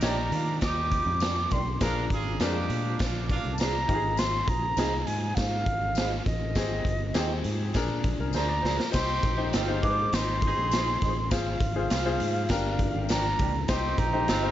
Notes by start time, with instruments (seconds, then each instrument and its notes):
Already playing: horn section D#4 G4 A#4
0.01 fingered electric bass A#1, clean electric guitar A#3 D4 G4, grand piano D#4 G4 C#5, flute A#5, snare, closed hi-hat, tambourine
0.09 grand piano D5
0.32 fingered electric bass D#3, horn section A#3 D4 F4, closed hi-hat
0.61 fingered electric bass D#2, horn section G3 D#4 G4, flute D6, kick, snare, closed hi-hat, tambourine
0.91 kick, closed hi-hat
1.06 fingered electric bass F2
1.20 clean electric guitar A#3 D4 G4, snare, closed hi-hat, tambourine
1.51 fingered electric bass B1, clean electric guitar A#3 D4 G4, flute C6, kick, closed hi-hat
1.74 flute C6
1.81 fingered electric bass A#1, grand piano D4 G#4 A#4, horn section D4 F4 A#4, flute A#5, kick, snare, closed hi-hat, tambourine
2.10 fingered electric bass G#1, horn section D4 F4 G#4, kick, closed hi-hat
2.40 fingered electric bass F2, grand piano G#3 D4 A#4, clean electric guitar A#3 D4 G#4, horn section A#3 D4 G4, snare, closed hi-hat, tambourine
2.69 fingered electric bass A#2, closed hi-hat
2.99 fingered electric bass A#1, horn section A#3 D4 F4, kick, snare, closed hi-hat, tambourine
3.29 horn section A#3 D4 F4, kick, closed hi-hat
3.45 fingered electric bass C2
3.53 flute A5
3.58 clean electric guitar A#3 D4 G#4, flute A#5, snare, closed hi-hat, tambourine
3.88 fingered electric bass G#1, clean electric guitar C4 D#4 G#4, grand piano D#4 F4 G4, kick, closed hi-hat
3.95 grand piano G#4
4.17 flute C6, snare, closed hi-hat, tambourine
4.48 fingered electric bass A#1, flute A#5, kick, closed hi-hat
4.77 fingered electric bass C2, clean electric guitar C4 D#4 G#4, grand piano D#4 F4 G#4, snare, closed hi-hat, tambourine
5.06 fingered electric bass G#2, flute G#5, closed hi-hat
5.35 fingered electric bass G#2, flute F5, kick, snare, closed hi-hat, tambourine
5.66 fingered electric bass G#1, kick, closed hi-hat
5.95 clean electric guitar C4 D#4 G#4, snare, closed hi-hat, tambourine
6.26 fingered electric bass A1, flute D#5, kick, snare, closed hi-hat
6.55 fingered electric bass G#1, grand piano C4 G4 G#4, kick, snare, closed hi-hat, tambourine
6.85 fingered electric bass G1, kick, closed hi-hat
7.14 fingered electric bass D#2, grand piano C4 G4 G#4, clean electric guitar C4 D#4 G4, snare, closed hi-hat, tambourine
7.44 fingered electric bass G#2, closed hi-hat
7.74 fingered electric bass A#1, grand piano D4 G#4 A#4, kick, snare, closed hi-hat, tambourine
7.89 fingered electric bass A#2
8.04 fingered electric bass A#1, kick, closed hi-hat
8.19 fingered electric bass C2, grand piano A#4
8.33 fingered electric bass D2, clean electric guitar A#3 D4 G#4, grand piano C5, flute A#5, snare, tambourine
8.49 grand piano D5
8.62 fingered electric bass C#2, clean electric guitar A#3 D4 G#4, grand piano C5, snare
8.77 grand piano A#4, snare
8.92 fingered electric bass C2, horn section C4 D#4 G4, grand piano D#4 G4 C5, flute C6, kick, snare, crash, tambourine
9.23 fingered electric bass A#1, kick, closed hi-hat
9.37 grand piano D#4 G4 C5
9.53 fingered electric bass G1, horn section G#3 C4 F4, clean electric guitar C4 D#4 G4, snare, closed hi-hat, tambourine
9.68 grand piano D#4 G4 C5
9.83 fingered electric bass G#2, grand piano D#4 G#4 B4, flute D6, kick, closed hi-hat
9.90 grand piano C5
10.13 fingered electric bass G#1, horn section C4 D#4 G4, flute C6, snare, closed hi-hat, tambourine
10.42 horn section C4 D#4 G#4, kick, closed hi-hat
10.58 fingered electric bass A#1
10.71 clean electric guitar C4 D#4 G#4, snare, closed hi-hat, tambourine
11.02 fingered electric bass A1, clean electric guitar C4 D#4 G#4, kick, snare, closed hi-hat
11.31 fingered electric bass G#1, grand piano F4 G#4 C5, flute F5, kick, snare, closed hi-hat, tambourine
11.60 fingered electric bass G#1, kick, closed hi-hat
11.76 grand piano F4 G#4 C5
11.90 fingered electric bass C2, clean electric guitar C4 F4 G#4, snare, closed hi-hat, tambourine
12.06 grand piano F4 G#4 C5
12.20 fingered electric bass G#2, closed hi-hat
12.49 fingered electric bass G1, grand piano D4 G4 A#4, kick, snare, closed hi-hat, tambourine
12.79 kick, closed hi-hat
12.95 fingered electric bass G#1
13.09 clean electric guitar A#3 D4 G4, flute A#5, snare, closed hi-hat, tambourine
13.39 fingered electric bass C#2, clean electric guitar A#3 D4 G4, kick, closed hi-hat
13.68 fingered electric bass C2, horn section C4 D#4 G4, grand piano D#4 G4 C5, flute C6, kick, snare, closed hi-hat, tambourine
13.98 fingered electric bass A#1, flute A#5, kick, closed hi-hat
14.13 grand piano D#4 G4 C5
14.28 fingered electric bass G1, horn section G#3 C4 F4, clean electric guitar C4 D#4 G4, snare, closed hi-hat, tambourine
14.43 grand piano D#4 G4 C5